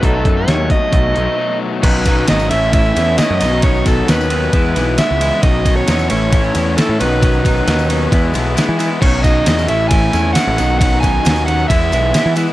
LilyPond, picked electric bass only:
\new Staff \with { instrumentName = "Picked electric bass" } { \clef bass \time 4/4 \key b \mixolydian \tempo 4 = 134 b,,8 fis,8 dis,8 r8 b,,8 b,,16 r4 r16 | b,,4 gis,,8 a,,4 e,8 r16 fis,16 b,,8~ | b,,4 dis,4 e,8 b,,8 r16 cis,8 r16 | b,,4 e,8 a,,4 e,8 r16 a,16 b,,8~ |
b,,4 dis,4 e,8 b,,8 r16 e8 r16 | b,,4 e,8 a,,4 e,8 r16 a,,16 b,,8~ | b,,4 dis,4 e,8 b,,8 r16 e8 r16 | }